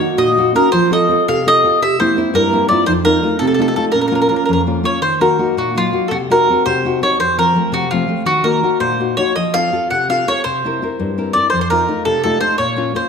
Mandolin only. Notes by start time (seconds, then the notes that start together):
Already playing: C#5
0.18 D#5
0.56 A#4
0.72 C5
0.93 D#5
1.28 F5
1.48 D#5
1.83 E5
2.00 C5
2.35 A#4
2.69 D5
2.86 C5
3.05 A#4
3.39 A4
3.47 A4
3.54 A4
3.62 A4
3.68 A4
3.76 A4
3.92 A#4
4.01 A#4
4.08 A#4
4.15 A#4
4.22 A#4
4.29 A#4
4.36 A#4
4.46 A#4
4.53 A#4
4.85 C#5
5.02 C5
5.21 A#4
5.58 F#4
5.78 F4
6.08 F#4 A4
6.31 A#4
6.66 C5
7.03 C#5
7.20 C5
7.39 A#4
7.74 F#4
7.91 F4
8.26 F#4
8.44 A#4
8.80 C5
9.17 C#5
9.36 D#5
9.54 F5
9.90 F#5
10.10 F5
10.28 C#5
10.44 C5
11.33 D5
11.50 C5
11.61 C5
11.70 A#4
12.05 A4
12.24 A4
12.41 C5
12.58 C#5
12.96 C5